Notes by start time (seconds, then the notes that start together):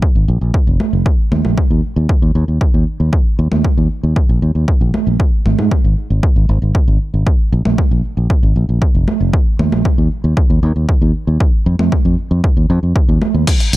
0.02 kick
0.15 G#1
0.28 A#1
0.41 A#1
0.54 kick
0.67 F1
0.80 high conga
0.93 F1
1.06 kick
1.32 D#2, high conga
1.45 A#1, high conga
1.58 kick
1.71 D#2
1.96 D#2
2.09 kick
2.22 D#2
2.35 D#2
2.48 D#2
2.61 kick
2.74 D#2
3.00 D#2
3.13 kick
3.39 D#2
3.52 D#2, high conga
3.64 kick
3.78 D#2
4.03 D#2
4.16 kick
4.29 A#1
4.42 D#2
4.55 D#2
4.68 kick
4.81 A#1
4.94 high conga
5.07 A#1
5.20 kick
5.46 G#1, high conga
5.58 G#2, high conga
5.71 kick
5.84 G#1
6.10 G#1
6.23 kick
6.36 G#1
6.49 G#1
6.62 G#1
6.75 kick
6.88 G#1
7.14 G#1
7.27 kick
7.52 A#1
7.65 A#1, high conga
7.78 kick
7.91 A#1
8.17 A#1
8.30 kick
8.43 G#1
8.56 A#1
8.69 A#1
8.82 kick
8.95 F1
9.08 high conga
9.20 F1
9.33 kick
9.59 D#2, high conga
9.72 A#1, high conga
9.85 kick
9.98 D#2
10.24 D#2
10.37 kick
10.50 D#2
10.63 D#2
10.76 D#2
10.89 kick
11.02 D#2
11.27 D#2
11.40 kick
11.66 F2
11.79 F2, high conga
11.92 kick
12.05 F2
12.31 F2
12.44 kick
12.57 D#2
12.70 F2
12.83 F2
12.96 kick
13.09 D#2
13.22 high conga
13.34 D#2
13.47 kick, closed hi-hat, crash, tambourine
13.60 closed hi-hat, tambourine
13.73 A#1, closed hi-hat, tambourine